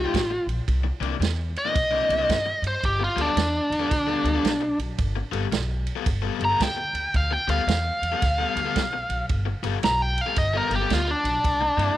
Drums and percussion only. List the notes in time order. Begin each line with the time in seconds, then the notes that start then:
0.14 kick, snare, ride
0.49 ride
0.68 kick, ride
1.02 ride
1.22 snare, ride
1.56 ride
1.76 kick, ride
2.10 ride
2.29 kick, snare, ride
2.64 ride
2.83 kick, ride
3.18 ride
3.37 snare, ride
3.72 ride
3.91 kick, snare, ride
4.25 ride
4.45 snare, ride
4.79 ride
4.98 kick, ride
5.33 ride
5.52 snare, ride
5.87 ride
6.06 kick, ride
6.41 ride
6.60 kick, snare, ride
6.95 ride
7.14 kick, ride
7.49 ride
7.68 snare, ride
8.03 ride
8.22 kick, snare, ride
8.57 ride
8.76 kick, snare, ride
9.10 ride
9.29 kick, ride
9.63 ride
9.83 snare, ride
10.18 ride
10.36 kick, snare, ride
10.71 ride
10.90 kick, snare, ride
11.25 ride
11.44 kick, ride
11.79 ride